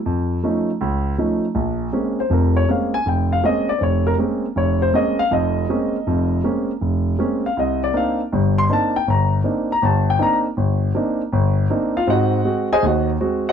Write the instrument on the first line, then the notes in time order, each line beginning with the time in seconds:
grand piano
0.06 F2
0.43 F3 A3 C#4 D#4
0.81 C#2
1.18 F3 A3 C#4 D#4
1.55 A#1
1.93 G#3 A#3 C4 C#4
2.20 C5
2.30 F1 F2 A#4
2.56 C#5
2.68 G#3 A#3 C4 C#4 F5
2.94 G#5
3.06 F1 G5
3.33 F5
3.43 G#3 A#3 C4 C#4 D#5
3.69 D5
3.79 F1 C5
3.83 C#5
4.07 A#4
4.18 G#3 A#3 C4 C#4
4.56 F1 C#5
4.82 C5
4.93 G#3 A#3 C4 C#4 D#5
5.19 F5
5.31 F1 F2 D#5
5.69 G#3 A#3 C4 C#4
6.07 F1 F2
6.44 G#3 A#3 C4 C#4
6.81 F1
7.19 G#3 A#3 C4 C#4
7.46 F5
7.57 C2 D#5
7.84 D5
7.94 A#3 C4 D4 D#4 F5
8.32 G1 G2
8.58 C6
8.69 A#3 C4 D4 D#4 A5
8.96 G5
9.07 G1 A#5
9.44 A#3 C4 D4 D#4
9.72 A#5
9.82 G1 A5
10.10 G5
10.19 A#3 C4 D4 D#4 A#5
10.57 G1
10.95 A#3 C4 D4 D#4
11.33 G1
11.70 A#3 C4 D4 D#4
11.97 F4 F5
12.07 G#2 C4 F#4 C5 D#5 F#5
12.45 G#3 C4 F#4
12.73 G#4 C5 D#5 G#5
12.82 D#2 F#5
12.87 F#4 C5 D#5
13.21 G#3 C4 F#4
13.49 F#5